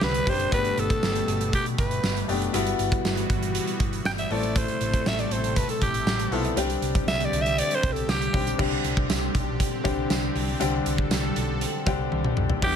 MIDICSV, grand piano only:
0, 0, Header, 1, 2, 480
1, 0, Start_track
1, 0, Tempo, 504202
1, 498, Time_signature, 4, 2, 24, 8
1, 12145, End_track
2, 0, Start_track
2, 0, Title_t, "Grand piano"
2, 0, Program_c, 0, 0
2, 0, Control_c, 0, 64, 127
2, 0, Note_on_c, 0, 55, 71
2, 0, Note_on_c, 0, 60, 64
2, 0, Note_on_c, 0, 62, 64
2, 0, Note_on_c, 0, 67, 80
2, 253, Note_off_c, 0, 55, 0
2, 253, Note_on_c, 0, 55, 66
2, 258, Note_off_c, 0, 60, 0
2, 258, Note_on_c, 0, 60, 61
2, 261, Note_off_c, 0, 62, 0
2, 261, Note_on_c, 0, 62, 61
2, 264, Note_off_c, 0, 67, 0
2, 264, Note_on_c, 0, 67, 76
2, 425, Note_off_c, 0, 55, 0
2, 428, Note_off_c, 0, 60, 0
2, 429, Note_off_c, 0, 62, 0
2, 431, Note_off_c, 0, 67, 0
2, 491, Note_on_c, 0, 57, 76
2, 494, Note_on_c, 0, 59, 65
2, 496, Note_on_c, 0, 62, 66
2, 503, Note_on_c, 0, 67, 78
2, 509, Control_c, 0, 64, 0
2, 649, Control_c, 0, 64, 127
2, 1174, Note_off_c, 0, 57, 0
2, 1176, Note_off_c, 0, 59, 0
2, 1177, Note_off_c, 0, 62, 0
2, 1180, Note_off_c, 0, 67, 0
2, 2170, Note_on_c, 0, 57, 70
2, 2175, Note_on_c, 0, 59, 66
2, 2181, Note_on_c, 0, 62, 62
2, 2184, Note_on_c, 0, 67, 79
2, 2344, Note_off_c, 0, 57, 0
2, 2346, Note_off_c, 0, 59, 0
2, 2349, Note_off_c, 0, 62, 0
2, 2351, Note_off_c, 0, 67, 0
2, 2409, Note_on_c, 0, 55, 92
2, 2413, Note_on_c, 0, 59, 81
2, 2417, Note_on_c, 0, 64, 77
2, 2421, Note_on_c, 0, 66, 98
2, 2431, Control_c, 0, 64, 0
2, 2612, Control_c, 0, 64, 127
2, 3093, Note_off_c, 0, 55, 0
2, 3095, Note_off_c, 0, 59, 0
2, 3097, Note_off_c, 0, 64, 0
2, 3099, Note_off_c, 0, 66, 0
2, 4093, Note_on_c, 0, 57, 76
2, 4097, Note_on_c, 0, 60, 70
2, 4101, Note_on_c, 0, 64, 66
2, 4103, Note_on_c, 0, 69, 86
2, 4110, Control_c, 0, 64, 0
2, 4272, Control_c, 0, 64, 127
2, 4863, Note_off_c, 0, 57, 0
2, 4865, Note_off_c, 0, 60, 0
2, 4868, Note_off_c, 0, 64, 0
2, 4869, Note_off_c, 0, 69, 0
2, 6010, Note_on_c, 0, 59, 67
2, 6015, Note_on_c, 0, 60, 65
2, 6017, Note_on_c, 0, 64, 67
2, 6021, Note_on_c, 0, 69, 79
2, 6184, Note_off_c, 0, 59, 0
2, 6186, Note_off_c, 0, 60, 0
2, 6188, Note_off_c, 0, 64, 0
2, 6190, Note_off_c, 0, 69, 0
2, 6250, Note_on_c, 0, 55, 94
2, 6252, Note_on_c, 0, 60, 81
2, 6256, Note_on_c, 0, 62, 78
2, 6262, Note_on_c, 0, 67, 100
2, 6271, Control_c, 0, 64, 0
2, 6447, Control_c, 0, 64, 127
2, 6934, Note_off_c, 0, 55, 0
2, 6935, Note_off_c, 0, 60, 0
2, 6937, Note_off_c, 0, 62, 0
2, 6939, Note_off_c, 0, 67, 0
2, 7929, Note_on_c, 0, 55, 72
2, 7932, Note_on_c, 0, 60, 64
2, 7937, Note_on_c, 0, 62, 67
2, 7939, Note_on_c, 0, 67, 80
2, 8103, Note_off_c, 0, 55, 0
2, 8105, Note_off_c, 0, 60, 0
2, 8107, Note_off_c, 0, 62, 0
2, 8109, Note_off_c, 0, 67, 0
2, 8165, Note_on_c, 0, 50, 78
2, 8168, Note_on_c, 0, 55, 67
2, 8171, Note_on_c, 0, 60, 68
2, 8173, Note_on_c, 0, 62, 67
2, 8179, Note_on_c, 0, 67, 85
2, 8190, Control_c, 0, 64, 0
2, 8382, Control_c, 0, 64, 127
2, 8851, Note_off_c, 0, 50, 0
2, 8853, Note_off_c, 0, 55, 0
2, 8854, Note_off_c, 0, 60, 0
2, 8855, Note_off_c, 0, 62, 0
2, 8858, Note_off_c, 0, 67, 0
2, 9364, Note_on_c, 0, 50, 86
2, 9365, Note_on_c, 0, 55, 79
2, 9367, Note_on_c, 0, 60, 78
2, 9370, Note_on_c, 0, 62, 81
2, 9374, Note_on_c, 0, 67, 99
2, 9881, Note_off_c, 0, 50, 0
2, 9881, Note_off_c, 0, 55, 0
2, 9882, Note_off_c, 0, 60, 0
2, 9884, Note_off_c, 0, 62, 0
2, 9886, Note_off_c, 0, 67, 0
2, 10088, Note_on_c, 0, 50, 92
2, 10090, Note_on_c, 0, 55, 88
2, 10092, Note_on_c, 0, 60, 83
2, 10094, Note_on_c, 0, 62, 83
2, 10100, Note_on_c, 0, 67, 97
2, 10773, Note_off_c, 0, 50, 0
2, 10774, Note_off_c, 0, 55, 0
2, 10775, Note_off_c, 0, 60, 0
2, 10775, Note_off_c, 0, 62, 0
2, 10779, Note_off_c, 0, 67, 0
2, 11289, Note_on_c, 0, 50, 89
2, 11293, Note_on_c, 0, 55, 83
2, 11294, Note_on_c, 0, 60, 82
2, 11299, Note_on_c, 0, 62, 82
2, 11303, Note_on_c, 0, 67, 98
2, 11803, Note_off_c, 0, 50, 0
2, 11805, Note_off_c, 0, 55, 0
2, 11806, Note_off_c, 0, 60, 0
2, 11809, Note_off_c, 0, 62, 0
2, 11810, Note_off_c, 0, 67, 0
2, 12011, Note_on_c, 0, 55, 74
2, 12014, Note_on_c, 0, 59, 69
2, 12017, Note_on_c, 0, 62, 69
2, 12020, Note_on_c, 0, 64, 71
2, 12023, Note_on_c, 0, 67, 83
2, 12031, Control_c, 0, 64, 0
2, 12145, Note_off_c, 0, 55, 0
2, 12145, Note_off_c, 0, 59, 0
2, 12145, Note_off_c, 0, 62, 0
2, 12145, Note_off_c, 0, 64, 0
2, 12145, Note_off_c, 0, 67, 0
2, 12145, End_track
0, 0, End_of_file